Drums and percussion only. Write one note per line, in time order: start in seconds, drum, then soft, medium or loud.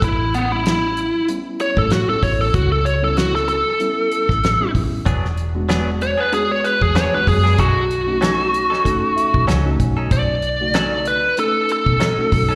0.02 kick loud
0.02 closed hi-hat medium
0.34 closed hi-hat medium
0.66 snare loud
0.66 closed hi-hat medium
0.97 closed hi-hat medium
1.28 closed hi-hat medium
1.60 closed hi-hat medium
1.77 kick medium
1.90 snare loud
1.90 closed hi-hat medium
2.23 kick medium
2.23 open hi-hat medium
2.54 kick loud
2.54 closed hi-hat medium
2.86 closed hi-hat medium
3.17 snare loud
3.17 closed hi-hat medium
3.35 snare soft
3.48 closed hi-hat medium
3.80 closed hi-hat medium
4.12 closed hi-hat medium
4.29 kick medium
4.29 snare soft
4.44 snare loud
4.44 closed hi-hat medium
4.75 kick medium
4.75 open hi-hat medium
5.06 kick loud
5.06 closed hi-hat loud
5.25 snare soft
5.37 closed hi-hat medium
5.69 snare loud
5.69 closed hi-hat medium
6.01 closed hi-hat medium
6.33 closed hi-hat medium
6.65 closed hi-hat medium
6.81 kick medium
6.95 snare loud
6.95 closed hi-hat medium
7.27 kick medium
7.27 open hi-hat medium
7.46 snare soft
7.58 kick loud
7.58 closed hi-hat medium
7.91 closed hi-hat medium
8.22 snare loud
8.22 closed hi-hat medium
8.54 closed hi-hat medium
8.73 snare soft
8.85 kick medium
8.85 closed hi-hat medium
9.18 closed hi-hat medium
9.34 kick medium
9.48 snare loud
9.48 closed hi-hat medium
9.80 kick medium
9.80 closed hi-hat medium
10.11 kick loud
10.11 closed hi-hat medium
10.42 closed hi-hat medium
10.74 snare loud
10.74 closed hi-hat medium
11.05 closed hi-hat medium
11.37 closed hi-hat medium
11.69 closed hi-hat medium
11.86 kick medium
12.00 snare loud
12.00 closed hi-hat medium
12.32 kick medium
12.32 open hi-hat medium